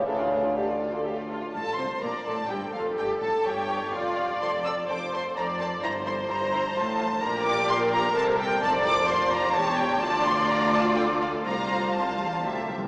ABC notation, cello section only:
X:1
M:3/4
L:1/8
Q:1/4=126
K:Dm
V:1 name="Cello section" clef=bass
D,,4- D,, z | A,, C, B,, A,, G,, F,, | G,, A,, G,,2 F,,2 | F,,2 F,,2 F,,2 |
G,,2 G,,2 A,,2 | [K:F] B,,4 C,2 | F,,4 E,,2 | D,,6 |
C,,2 C,, E,, D,, C,, |]